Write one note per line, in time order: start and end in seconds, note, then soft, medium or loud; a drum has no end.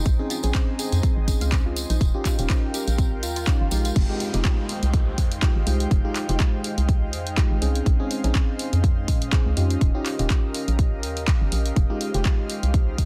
0.00 2.01 G#3 medium
0.00 0.84 D#4 medium
0.00 0.84 G5 medium
0.05 0.16 A#1 loud
0.05 1.99 G#4 medium
0.05 1.99 C5 medium
0.05 1.99 D#5 medium
0.05 kick loud
0.05 closed hi-hat medium
0.05 tambourine soft
0.19 0.40 C4 medium
0.19 0.40 C#4 medium
0.19 0.40 D#4 medium
0.19 0.40 G#4 loud
0.30 0.39 F4 medium
0.30 open hi-hat loud
0.30 tambourine medium
0.43 0.52 A#1 loud
0.43 1.25 C4 medium
0.43 1.25 C#4 medium
0.43 1.25 D#4 medium
0.43 1.25 G#4 loud
0.43 2.79 C6 medium
0.43 closed hi-hat medium
0.43 tambourine soft
0.54 0.64 C5 medium
0.54 kick loud
0.54 clap loud
0.54 closed hi-hat medium
0.54 tambourine soft
0.79 0.84 G#4 medium
0.79 2.79 D#5 medium
0.79 open hi-hat medium
0.79 tambourine medium
0.92 1.01 F2 medium
0.92 closed hi-hat medium
0.92 tambourine soft
1.03 1.09 C4 medium
1.03 kick loud
1.03 closed hi-hat medium
1.03 tambourine soft
1.17 1.36 G#1 loud
1.27 1.99 C4 medium
1.27 2.00 C#4 medium
1.27 2.00 D#4 medium
1.27 2.00 G#4 medium
1.27 kick medium
1.27 open hi-hat loud
1.27 tambourine medium
1.41 1.85 C#2 medium
1.41 1.49 F5 medium
1.41 closed hi-hat medium
1.41 tambourine medium
1.52 kick loud
1.52 clap loud
1.52 closed hi-hat medium
1.52 tambourine soft
1.66 1.70 F4 loud
1.76 open hi-hat medium
1.76 tambourine medium
1.90 1.99 A#1 loud
1.90 1.97 D#4 medium
1.90 closed hi-hat medium
1.90 tambourine soft
2.01 2.12 D#1 loud
2.01 3.94 A#4 medium
2.01 3.94 F5 medium
2.01 3.94 G5 medium
2.01 kick loud
2.01 closed hi-hat medium
2.01 tambourine soft
2.14 2.35 C#4 medium
2.14 2.36 D#4 medium
2.14 2.36 F4 medium
2.14 2.36 G4 loud
2.25 2.34 F4 medium
2.25 kick medium
2.25 clap medium
2.25 open hi-hat loud
2.25 tambourine medium
2.39 2.47 D#1 loud
2.39 3.20 C#4 medium
2.39 3.20 D#4 medium
2.39 3.20 F4 medium
2.39 3.20 G4 loud
2.39 3.96 G4 medium
2.39 closed hi-hat medium
2.39 tambourine medium
2.50 2.59 C5 medium
2.50 kick loud
2.50 clap loud
2.50 closed hi-hat medium
2.50 tambourine soft
2.74 2.80 G4 medium
2.74 5.53 F5 medium
2.74 open hi-hat medium
2.74 tambourine medium
2.87 3.24 A#1 medium
2.87 closed hi-hat medium
2.87 tambourine soft
2.98 3.04 C4 medium
2.98 kick loud
2.98 closed hi-hat medium
2.98 tambourine soft
2.98 swell medium
3.23 3.56 D#2 medium
3.23 3.32 F4 medium
3.23 open hi-hat loud
3.23 tambourine medium
3.36 3.44 F4 medium
3.36 closed hi-hat medium
3.36 tambourine soft
3.47 3.66 C#4 medium
3.47 3.66 D#4 medium
3.47 3.60 F4 medium
3.47 3.66 F4 medium
3.47 3.66 G4 medium
3.47 kick loud
3.47 clap loud
3.47 closed hi-hat medium
3.47 tambourine soft
3.61 3.69 G1 medium
3.61 3.65 F4 loud
3.71 3.91 A#1 medium
3.71 4.06 G#3 medium
3.71 4.06 D#4 medium
3.71 4.06 F4 medium
3.71 4.06 G4 medium
3.71 open hi-hat medium
3.71 tambourine medium
3.85 3.96 F4 medium
3.85 closed hi-hat medium
3.85 tambourine medium
3.96 4.07 F1 loud
3.96 9.77 G#3 medium
3.96 8.65 D#4 medium
3.96 7.82 C5 medium
3.96 13.05 D#5 medium
3.96 11.72 F5 medium
3.96 7.82 G5 medium
3.96 kick loud
3.96 closed hi-hat medium
3.96 crash loud
3.96 downlifter medium
4.09 4.31 G#3 medium
4.09 4.31 D#4 medium
4.09 4.31 F4 medium
4.09 4.31 G4 loud
4.20 open hi-hat loud
4.34 4.43 F1 loud
4.34 5.15 G#3 medium
4.34 5.15 D#4 medium
4.34 5.15 F4 medium
4.34 5.15 G4 loud
4.34 closed hi-hat medium
4.45 kick loud
4.45 clap loud
4.45 closed hi-hat medium
4.66 9.81 G#3 medium
4.66 open hi-hat medium
4.83 5.19 C2 medium
4.83 closed hi-hat medium
4.94 kick loud
4.94 closed hi-hat medium
5.18 5.51 F2 medium
5.18 kick medium
5.18 open hi-hat loud
5.30 8.65 G5 medium
5.30 closed hi-hat medium
5.42 5.61 G#3 medium
5.42 5.61 D#4 medium
5.42 5.61 F4 medium
5.42 5.61 G4 medium
5.42 kick loud
5.42 clap loud
5.42 closed hi-hat medium
5.56 5.64 G#1 medium
5.66 5.87 C2 medium
5.66 6.01 G#3 medium
5.66 6.01 D#4 medium
5.66 6.01 F4 medium
5.66 6.01 G4 medium
5.66 open hi-hat medium
5.80 closed hi-hat medium
5.91 6.02 F1 loud
5.91 kick loud
5.91 closed hi-hat medium
6.04 6.26 G#3 medium
6.04 6.26 D#4 medium
6.04 6.26 F4 medium
6.04 6.26 G4 loud
6.16 clap medium
6.16 open hi-hat loud
6.29 6.38 F1 loud
6.29 7.10 G#3 medium
6.29 7.10 D#4 medium
6.29 7.10 F4 medium
6.29 7.11 G4 loud
6.29 closed hi-hat medium
6.40 kick loud
6.40 clap loud
6.40 closed hi-hat medium
6.64 open hi-hat loud
6.78 7.15 C2 medium
6.78 closed hi-hat medium
6.89 kick loud
6.89 closed hi-hat medium
7.13 7.46 F2 medium
7.13 open hi-hat loud
7.27 closed hi-hat medium
7.37 7.56 G#3 medium
7.37 7.56 D#4 medium
7.37 7.57 F4 medium
7.37 7.57 G4 medium
7.37 kick loud
7.37 clap loud
7.37 closed hi-hat medium
7.51 7.60 G#1 medium
7.62 7.82 C2 medium
7.62 7.96 C4 medium
7.62 7.96 C#4 medium
7.62 7.97 D#4 medium
7.62 7.97 G#4 medium
7.62 open hi-hat medium
7.75 closed hi-hat medium
7.86 7.97 A#1 loud
7.86 11.77 C#4 medium
7.86 9.79 C5 medium
7.86 kick loud
7.86 closed hi-hat medium
7.99 8.21 C4 medium
7.99 8.21 C#4 medium
7.99 8.21 D#4 medium
7.99 8.21 G#4 loud
8.11 open hi-hat loud
8.24 8.33 A#1 loud
8.24 9.05 C4 medium
8.24 9.06 C#4 medium
8.24 9.06 D#4 medium
8.24 9.06 G#4 loud
8.24 10.60 D#5 medium
8.24 closed hi-hat medium
8.35 kick loud
8.35 clap loud
8.35 closed hi-hat medium
8.59 open hi-hat loud
8.73 9.10 F2 medium
8.73 10.60 C6 medium
8.73 closed hi-hat medium
8.84 kick loud
8.84 closed hi-hat medium
9.08 9.42 A#2 medium
9.08 kick medium
9.08 open hi-hat loud
9.22 closed hi-hat medium
9.32 9.51 C4 medium
9.32 9.52 C#4 medium
9.32 9.52 D#4 medium
9.32 9.52 G#4 medium
9.32 kick loud
9.32 clap loud
9.32 closed hi-hat medium
9.46 9.55 C#2 loud
9.57 9.77 F2 medium
9.57 9.92 C#4 medium
9.57 9.92 D#4 medium
9.57 9.92 F4 medium
9.57 9.92 G4 medium
9.57 open hi-hat medium
9.70 closed hi-hat medium
9.81 9.92 D#1 loud
9.81 13.05 G4 medium
9.81 11.74 A#4 medium
9.81 kick loud
9.81 closed hi-hat medium
9.95 10.16 C#4 medium
9.95 10.16 D#4 medium
9.95 10.16 F4 medium
9.95 10.16 G4 loud
10.06 clap medium
10.06 open hi-hat loud
10.19 10.28 D#1 loud
10.19 11.00 C#4 medium
10.19 11.01 D#4 medium
10.19 11.01 F4 medium
10.19 11.01 G4 loud
10.19 closed hi-hat medium
10.30 13.05 F5 medium
10.30 kick loud
10.30 clap loud
10.30 closed hi-hat soft
10.51 11.77 G4 medium
10.51 open hi-hat loud
10.68 11.05 A#1 medium
10.68 closed hi-hat medium
10.79 kick loud
10.79 closed hi-hat medium
11.03 11.37 D#2 medium
11.03 open hi-hat loud
11.17 closed hi-hat medium
11.28 kick loud
11.28 clap loud
11.28 closed hi-hat soft
11.41 11.50 G1 loud
11.52 11.72 A#1 medium
11.52 open hi-hat medium
11.66 closed hi-hat medium
11.76 11.87 F1 loud
11.76 13.05 G#3 medium
11.76 13.05 D#4 medium
11.76 13.05 C5 medium
11.76 13.05 F5 medium
11.76 kick loud
11.76 closed hi-hat medium
11.90 12.11 G#3 medium
11.90 12.11 D#4 medium
11.90 12.11 F4 medium
11.90 12.11 G4 loud
12.01 open hi-hat loud
12.08 13.05 G#3 medium
12.14 12.23 F1 loud
12.14 12.96 G#3 medium
12.14 12.96 D#4 medium
12.14 12.96 F4 medium
12.14 12.96 G4 loud
12.14 closed hi-hat medium
12.24 13.05 G5 medium
12.24 kick loud
12.24 clap loud
12.24 closed hi-hat medium
12.50 open hi-hat medium
12.63 13.00 C2 medium
12.63 closed hi-hat medium
12.74 kick loud
12.74 closed hi-hat medium
12.98 13.05 F2 medium
12.98 kick medium
12.98 open hi-hat loud